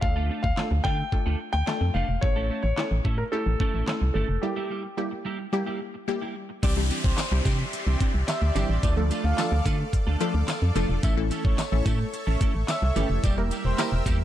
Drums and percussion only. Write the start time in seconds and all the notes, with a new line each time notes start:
0.02 kick
0.44 kick
0.57 snare, clap
0.85 kick
1.12 kick
1.67 snare, clap
2.23 kick
2.78 snare, clap
3.05 kick
3.60 kick
3.88 snare, clap
6.63 kick, closed hi-hat, crash, tambourine
6.91 closed hi-hat, tambourine
7.04 kick
7.18 snare, clap, closed hi-hat, tambourine
7.45 kick, closed hi-hat, tambourine
7.73 closed hi-hat, tambourine
8.00 kick, closed hi-hat
8.28 snare, clap, closed hi-hat, tambourine
8.56 closed hi-hat, tambourine
8.83 kick, closed hi-hat, tambourine
9.11 closed hi-hat, tambourine
9.38 snare, clap, closed hi-hat, tambourine
9.66 kick, closed hi-hat, tambourine
9.93 kick, closed hi-hat
10.21 closed hi-hat
10.48 snare, clap, closed hi-hat, tambourine
10.76 closed hi-hat, tambourine
11.03 kick, closed hi-hat, tambourine
11.31 closed hi-hat, tambourine
11.45 kick
11.58 snare, clap, closed hi-hat, tambourine
11.86 kick, closed hi-hat, tambourine
12.14 closed hi-hat, tambourine
12.41 kick, closed hi-hat
12.68 snare, clap, closed hi-hat, tambourine
12.96 closed hi-hat, tambourine
13.23 kick, closed hi-hat, tambourine
13.51 closed hi-hat, tambourine
13.78 snare, clap, closed hi-hat, tambourine
14.06 kick, closed hi-hat, tambourine